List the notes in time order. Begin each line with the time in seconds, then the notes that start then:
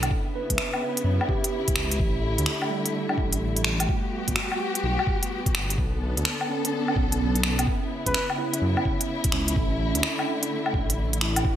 Already playing: D4 E4
0.03 closed hi-hat, low woodblock
0.10 C#3 B3 E4, kick
0.36 B4
0.50 C#2, kick, closed hi-hat
0.56 E5, finger snap
0.74 low woodblock
0.97 closed hi-hat
1.04 F#2
1.21 low woodblock
1.29 G4, kick
1.44 closed hi-hat
1.68 kick, closed hi-hat
1.76 C#2, finger snap
1.91 closed hi-hat
1.99 A1 D3 A3 E4, kick
2.38 D2, closed hi-hat
2.46 finger snap
2.62 low woodblock
2.71 G3
2.86 closed hi-hat
3.09 low woodblock
3.18 A1, kick
3.33 closed hi-hat
3.57 closed hi-hat
3.64 finger snap
3.80 closed hi-hat, low woodblock
3.88 A3 B3 F#4 G4, kick
4.28 G1, kick, closed hi-hat
4.36 finger snap
4.52 low woodblock
4.75 closed hi-hat
4.83 B1
4.99 low woodblock
5.07 kick
5.23 closed hi-hat
5.46 kick, closed hi-hat
5.55 G1, finger snap
5.70 closed hi-hat
5.78 B1 D3 A4, kick
6.17 D2, closed hi-hat
6.25 finger snap
6.41 low woodblock
6.49 C#4
6.65 closed hi-hat
6.73 B3
6.88 low woodblock
6.96 B1, kick
7.12 closed hi-hat
7.35 closed hi-hat
7.43 finger snap
7.59 closed hi-hat, low woodblock
7.67 C#3 E4, kick
8.06 C#2 B4, kick, closed hi-hat
8.14 finger snap
8.30 low woodblock
8.38 E4
8.54 closed hi-hat
8.62 F#2
8.77 low woodblock
8.85 kick
9.01 closed hi-hat
9.24 kick, closed hi-hat
9.32 C#2 C#4, finger snap
9.48 closed hi-hat
9.54 A1 D3 A3, kick
9.95 D2, closed hi-hat
10.03 finger snap
10.19 low woodblock
10.43 closed hi-hat
10.66 low woodblock
10.74 A1, kick
10.90 closed hi-hat
11.13 closed hi-hat
11.21 E4, finger snap
11.36 closed hi-hat, low woodblock
11.45 B3 F#4 G4, kick